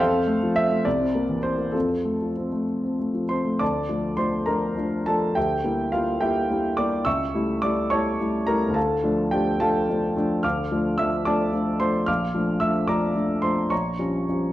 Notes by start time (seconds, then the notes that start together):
Already playing: F5
0.00 F2 A4 C5
0.13 C4
0.27 A3
0.43 F3
0.56 C4 E5
0.71 A3
0.85 C2 D5
1.00 C4
1.15 A#3
1.29 E3
1.43 C4 C5
1.58 A#3
1.72 F2 C4 F4 A4
1.89 C4
2.05 A3
2.22 F3
2.37 C4
2.52 A3
2.84 C4
2.99 A3
3.14 F3
3.29 C4 C5 C6
3.46 A3
3.59 D2 D5 A5 D6
3.89 F3 A3 D4
4.17 F3 A3 D4 C5 C6
4.46 F3 A3 D4 A#4 A#5
4.77 F3 A3 D4
5.06 F3 A3 D4 A4 A5
5.35 D2 G4 E5 G5
5.64 G3 A#3 E4
5.92 G3 A#3 E4 F4 F5
6.21 G3 A#3 E4 G4 E5 G5
6.50 G3 A#3 E4
6.77 G3 A#3 E4 D5 D6
7.05 C#2 E5 C#6 E6
7.34 G3 A3 E4
7.62 G3 A3 E4 D5 D6
7.90 G3 A3 E4 C#5 A5 C#6
8.19 G3 A3 E4
8.47 G3 A3 E4 A#4 A#5
8.68 D2
8.74 A4 F5 A5
9.03 F3 A3 D4
9.31 F3 A3 D4 G4 G5
9.60 F3 A3 D4 A4 F5 A5
9.89 F3 A3 D4
10.17 F3 A3 D4
10.43 D2 F5 D6 F6
10.72 F3 A3 D4
10.98 F3 A3 D4 E5 E6
11.25 F3 A3 D4 D5 A5 D6
11.53 F3 A3 D4
11.80 F3 A3 D4 C5 C6
12.06 A#1 F5 D6 F6
12.34 F3 A3 D4
12.60 F3 A3 D4 E5 E6
12.88 F3 A3 D4 D5 A#5 D6
13.15 F3 A3 D4
13.42 F3 A3 D4 C5 C6
13.70 A#1 C#5 A#5 C#6
13.99 F3 G3 C#4
14.29 F3 G3 C#4